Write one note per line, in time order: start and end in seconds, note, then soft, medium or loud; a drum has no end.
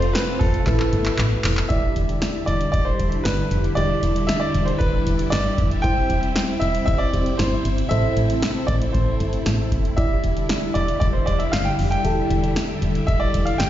0.00 0.16 F1 loud
0.00 0.66 C3 medium
0.00 1.68 A3 medium
0.00 0.65 F4 medium
0.00 0.66 F4 medium
0.00 0.65 A4 medium
0.00 0.15 C5 loud
0.00 0.65 C5 medium
0.00 closed hi-hat medium
0.13 0.41 B4 medium
0.13 snare loud
0.13 closed hi-hat medium
0.39 0.59 F1 medium
0.39 1.14 A4 medium
0.39 kick loud
0.39 open hi-hat medium
0.54 closed hi-hat medium
0.67 0.85 A1 loud
0.67 1.69 B2 medium
0.67 1.69 E4 medium
0.67 1.68 E4 medium
0.67 1.68 A4 medium
0.67 1.68 B4 medium
0.67 kick medium
0.67 clap medium
0.67 closed hi-hat medium
0.80 clap medium
0.93 1.11 G1 loud
0.93 closed hi-hat medium
1.05 clap medium
1.05 closed hi-hat medium
1.18 1.37 A1 loud
1.18 clap medium
1.18 closed hi-hat medium
1.44 1.62 F1 medium
1.44 clap loud
1.44 open hi-hat medium
1.57 clap medium
1.57 closed hi-hat medium
1.69 1.88 E1 loud
1.69 5.80 D3 medium
1.69 7.87 G3 medium
1.69 13.70 E4 medium
1.69 3.73 E4 medium
1.69 3.73 G4 medium
1.69 3.73 D5 medium
1.69 2.43 E5 medium
1.69 kick loud
1.69 closed hi-hat medium
1.96 2.23 E1 medium
1.96 closed hi-hat medium
2.09 closed hi-hat medium
2.22 snare loud
2.22 closed hi-hat medium
2.46 2.66 E1 medium
2.46 2.70 D5 medium
2.46 closed hi-hat medium
2.61 closed hi-hat medium
2.72 2.92 E1 loud
2.72 2.86 D5 medium
2.72 kick medium
2.72 closed hi-hat medium
2.85 3.22 C5 medium
2.99 3.18 E1 medium
2.99 closed hi-hat medium
3.12 closed hi-hat medium
3.23 3.43 G1 medium
3.23 3.60 B4 medium
3.23 snare loud
3.23 closed hi-hat medium
3.51 3.69 F1 medium
3.51 closed hi-hat medium
3.64 closed hi-hat medium
3.75 3.95 E1 loud
3.75 5.80 E4 medium
3.75 5.80 G4 medium
3.75 4.24 D5 loud
3.75 5.80 D5 medium
3.75 closed hi-hat medium
4.03 4.30 E1 loud
4.03 closed hi-hat medium
4.16 closed hi-hat medium
4.27 4.41 E5 loud
4.27 snare loud
4.27 closed hi-hat medium
4.40 4.67 D5 medium
4.54 4.73 E1 loud
4.54 closed hi-hat medium
4.66 4.71 C5 medium
4.66 closed hi-hat medium
4.78 4.99 E1 loud
4.78 5.33 B4 medium
4.78 kick medium
4.78 closed hi-hat medium
5.06 5.25 E1 medium
5.06 closed hi-hat medium
5.19 closed hi-hat medium
5.30 5.50 G1 loud
5.30 5.67 D5 loud
5.30 snare loud
5.30 closed hi-hat medium
5.58 5.76 F1 medium
5.58 kick medium
5.58 closed hi-hat medium
5.71 closed hi-hat medium
5.82 6.02 E1 loud
5.82 9.94 C3 medium
5.82 7.11 E4 medium
5.82 7.11 G4 medium
5.82 7.11 C5 medium
5.82 6.63 G5 loud
5.82 kick loud
5.82 closed hi-hat medium
6.10 6.37 E1 loud
6.10 closed hi-hat medium
6.23 closed hi-hat medium
6.36 snare loud
6.36 closed hi-hat medium
6.60 6.80 E1 loud
6.60 6.84 E5 loud
6.60 closed hi-hat medium
6.75 closed hi-hat medium
6.86 7.06 E1 loud
6.86 7.00 E5 loud
6.86 kick medium
6.86 closed hi-hat medium
6.98 7.35 D5 medium
7.13 7.31 E1 medium
7.13 7.90 E4 soft
7.13 7.91 G4 soft
7.13 7.90 C5 medium
7.13 closed hi-hat medium
7.26 closed hi-hat medium
7.37 7.57 G1 medium
7.37 7.74 C5 medium
7.37 snare loud
7.37 closed hi-hat medium
7.65 7.83 G1 loud
7.65 closed hi-hat medium
7.78 closed hi-hat medium
7.89 8.09 A1 loud
7.89 9.96 A3 medium
7.89 9.94 E4 medium
7.89 9.94 A4 medium
7.89 9.94 C5 medium
7.89 8.63 E5 loud
7.89 closed hi-hat medium
8.17 8.44 A1 medium
8.17 closed hi-hat medium
8.30 closed hi-hat medium
8.42 snare loud
8.42 closed hi-hat medium
8.67 8.87 A1 loud
8.67 8.73 D5 medium
8.67 kick medium
8.67 closed hi-hat medium
8.82 closed hi-hat medium
8.93 9.13 A1 loud
8.93 9.67 C5 medium
8.93 kick medium
8.93 closed hi-hat medium
9.20 9.38 G1 medium
9.20 closed hi-hat medium
9.33 closed hi-hat medium
9.46 9.73 A1 medium
9.46 snare loud
9.46 closed hi-hat medium
9.72 9.90 F1 medium
9.72 kick medium
9.72 closed hi-hat medium
9.85 closed hi-hat medium
9.97 10.16 E1 loud
9.97 13.70 D3 medium
9.97 13.70 G3 medium
9.97 12.01 E4 medium
9.97 12.01 G4 medium
9.97 12.01 D5 medium
9.97 10.77 E5 loud
9.97 kick loud
9.97 closed hi-hat medium
10.24 10.51 E1 medium
10.24 closed hi-hat medium
10.37 closed hi-hat medium
10.49 snare loud
10.49 closed hi-hat medium
10.74 10.94 E1 medium
10.74 10.99 D5 medium
10.74 closed hi-hat medium
10.88 closed hi-hat medium
11.00 11.19 E1 loud
11.00 11.05 D5 medium
11.00 kick medium
11.00 closed hi-hat medium
11.13 11.27 C5 medium
11.26 11.45 E1 medium
11.26 11.40 D5 medium
11.26 closed hi-hat medium
11.39 11.53 E5 medium
11.39 closed hi-hat medium
11.52 11.71 G1 loud
11.52 11.66 F5 medium
11.52 snare loud
11.52 closed hi-hat medium
11.65 11.71 G5 medium
11.79 11.97 F1 medium
11.79 open hi-hat medium
11.91 13.04 G5 medium
11.91 closed hi-hat medium
12.05 12.23 E1 loud
12.05 13.70 E4 medium
12.05 13.70 G4 medium
12.05 13.70 A4 medium
12.05 closed hi-hat medium
12.30 12.58 E1 loud
12.30 closed hi-hat medium
12.44 closed hi-hat medium
12.56 snare loud
12.56 closed hi-hat medium
12.82 13.00 E1 loud
12.82 closed hi-hat medium
12.95 closed hi-hat medium
13.07 13.26 E1 loud
13.07 13.21 E5 loud
13.07 kick medium
13.07 closed hi-hat medium
13.20 13.47 D5 medium
13.34 13.52 E1 medium
13.34 closed hi-hat medium
13.45 13.58 F5 medium
13.45 closed hi-hat medium
13.58 13.70 G1 loud
13.58 13.70 G5 loud
13.58 snare loud
13.58 closed hi-hat medium